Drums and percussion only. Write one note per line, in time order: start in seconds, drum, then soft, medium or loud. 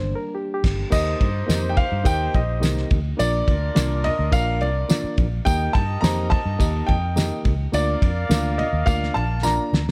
0.64 kick loud
0.64 snare loud
0.64 crash medium
0.92 kick loud
0.92 crash loud
0.92 tambourine medium
0.92 muted conga soft
1.21 kick loud
1.21 ride medium
1.49 snare loud
1.49 ride medium
1.49 tambourine medium
1.49 high conga medium
1.77 kick medium
1.77 ride medium
2.05 kick loud
2.05 ride medium
2.05 tambourine medium
2.05 muted conga medium
2.34 kick medium
2.34 ride soft
2.34 muted conga soft
2.34 low conga medium
2.63 snare loud
2.63 ride medium
2.63 tambourine medium
2.63 high conga medium
2.77 snare soft
2.91 kick loud
2.91 ride medium
2.91 high conga medium
3.19 ride medium
3.19 tambourine medium
3.19 muted conga soft
3.48 kick loud
3.48 ride medium
3.76 snare loud
3.76 ride medium
3.76 tambourine loud
3.76 high conga medium
4.04 ride medium
4.04 low conga medium
4.32 kick loud
4.32 ride medium
4.32 tambourine medium
4.32 muted conga soft
4.61 ride soft
4.61 muted conga medium
4.89 snare loud
4.89 ride medium
4.89 tambourine medium
4.89 high conga medium
5.18 kick loud
5.18 ride medium
5.18 high conga medium
5.46 kick loud
5.46 ride medium
5.46 tambourine medium
5.75 kick loud
5.75 ride medium
6.04 snare loud
6.04 ride medium
6.04 tambourine loud
6.04 high conga medium
6.31 kick loud
6.31 ride medium
6.60 kick medium
6.60 ride medium
6.60 tambourine medium
6.60 muted conga medium
6.88 kick medium
6.88 ride soft
6.88 muted conga medium
6.88 low conga medium
7.16 snare loud
7.16 ride medium
7.16 tambourine medium
7.16 high conga medium
7.45 kick loud
7.45 ride medium
7.45 high conga medium
7.74 ride medium
7.74 tambourine medium
7.74 muted conga soft
8.02 kick loud
8.02 ride medium
8.31 snare loud
8.31 ride medium
8.31 tambourine loud
8.31 high conga medium
8.59 ride medium
8.59 low conga medium
8.87 kick loud
8.87 ride medium
8.87 tambourine medium
8.87 muted conga soft
9.03 snare soft
9.16 ride soft
9.16 muted conga medium
9.43 snare medium
9.43 tambourine medium
9.43 high conga medium
9.74 snare loud
9.74 high conga medium